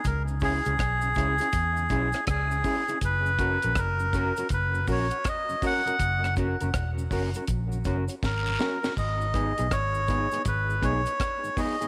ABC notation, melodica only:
X:1
M:4/4
L:1/8
Q:"Swing 16ths" 1/4=81
K:F#mix
V:1 name="Melodica"
A G4- G G2 | B2 A2 B c d f- | f z4 z A2 | d2 c2 B c2 d |]